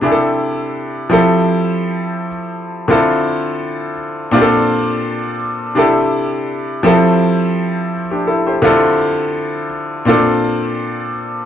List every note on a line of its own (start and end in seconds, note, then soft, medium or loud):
0.01 1.03 C3 medium
0.01 1.04 D4 medium
0.01 1.04 E4 medium
0.01 1.04 G4 medium
0.01 0.11 G#4 medium
0.12 1.08 A4 medium
1.10 2.26 F3 medium
1.10 2.26 C4 medium
1.10 2.26 E4 medium
1.10 2.27 G4 medium
1.10 2.27 A4 loud
2.88 3.90 D3 medium
2.88 3.91 C4 medium
2.88 3.91 E4 medium
2.88 3.91 F4 medium
2.88 3.92 A4 loud
4.31 5.33 A#2 medium
4.31 5.34 C4 medium
4.31 5.34 D4 medium
4.31 5.35 F4 medium
4.31 4.41 G4 medium
4.41 5.39 A4 loud
5.75 6.77 C3 medium
5.75 6.77 D4 medium
5.75 6.78 E4 medium
5.75 6.78 G4 medium
5.75 6.79 A4 medium
6.83 7.99 F3 medium
6.83 8.00 C4 medium
6.83 7.92 E4 medium
6.83 7.93 G4 medium
6.83 7.93 A4 loud
8.11 8.28 D4 medium
8.11 8.27 G4 medium
8.27 8.46 E4 medium
8.27 8.46 A4 medium
8.47 8.81 G4 medium
8.47 8.81 C5 medium
8.62 9.64 D3 medium
8.62 9.64 C4 medium
8.62 9.65 E4 medium
8.62 9.65 F4 medium
8.62 9.66 A4 loud
10.05 11.07 A#2 medium
10.05 11.08 C4 medium
10.05 11.08 D4 medium
10.05 11.09 F4 medium
10.05 11.09 A4 loud